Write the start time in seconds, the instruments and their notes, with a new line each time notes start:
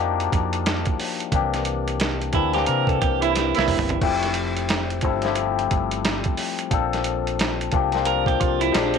Already playing: fingered electric bass F2, tine electric piano F3 A#3 D4 D#4 F#4 G4
0.20 closed hi-hat
0.32 fingered electric bass F2, kick, closed hi-hat
0.53 closed hi-hat
0.66 snare, closed hi-hat
0.85 kick, closed hi-hat
1.00 open hi-hat
1.20 closed hi-hat
1.32 fingered electric bass C2, tine electric piano D#3 A#3 C4 D4 G4, kick, closed hi-hat
1.39 tine electric piano E3
1.54 snare, closed hi-hat
1.65 closed hi-hat
1.88 closed hi-hat
2.00 snare, closed hi-hat
2.22 closed hi-hat
2.33 fingered electric bass D2, tine electric piano E3 A#3 C4 D4 E4, clean electric guitar E4, kick, closed hi-hat
2.53 tine electric piano E3 A#3 C4 D4 G4, clean electric guitar G4, snare, closed hi-hat
2.66 fingered electric bass C3, clean electric guitar A#4, closed hi-hat
2.87 clean electric guitar A4, kick, closed hi-hat
3.01 fingered electric bass C2, clean electric guitar G4, kick, closed hi-hat
3.22 horn section A#3 C4 E4, clean electric guitar E4, closed hi-hat
3.36 snare, closed hi-hat
3.55 fingered electric bass C2, horn section A#3 C4 E4, closed hi-hat
3.59 snare
3.68 fingered electric bass G1, mid tom, open hi-hat
3.79 floor tom
3.89 closed hi-hat, floor tom
4.01 fingered electric bass F1, tine electric piano F3 A3 C4 E4 G4, kick, crash
4.23 snare, closed hi-hat
4.34 closed hi-hat
4.57 closed hi-hat
4.69 snare, closed hi-hat
4.90 closed hi-hat
5.01 fingered electric bass G1, tine electric piano F3 A3 C4 E4, kick, closed hi-hat
5.06 tine electric piano A4
5.22 tine electric piano F3 G3 C4 E4, snare, closed hi-hat
5.27 tine electric piano A3 G4
5.35 closed hi-hat
5.59 closed hi-hat
5.71 fingered electric bass G1, kick, closed hi-hat
5.91 closed hi-hat
6.05 snare, closed hi-hat
6.24 kick, closed hi-hat
6.37 open hi-hat
6.59 closed hi-hat
6.70 fingered electric bass A#1, tine electric piano F3 A#3 C4 D4 A4, kick, closed hi-hat
6.93 snare, closed hi-hat
7.04 closed hi-hat
7.27 closed hi-hat
7.39 snare, closed hi-hat
7.61 closed hi-hat
7.72 fingered electric bass C2, tine electric piano F3 A#3 C4 D4, kick, closed hi-hat
7.76 tine electric piano G4
7.92 tine electric piano F3 A#3 C4 D4, snare, closed hi-hat
7.97 tine electric piano F4
8.05 clean electric guitar A#4, closed hi-hat
8.26 clean electric guitar G4, kick, closed hi-hat
8.40 fingered electric bass C2, clean electric guitar F4, kick, closed hi-hat
8.61 clean electric guitar E4, closed hi-hat
8.72 fingered electric bass A#1, tine electric piano F3 G#3 C4 D4 G4, clean electric guitar D4, snare, closed hi-hat
8.94 clean electric guitar C4, closed hi-hat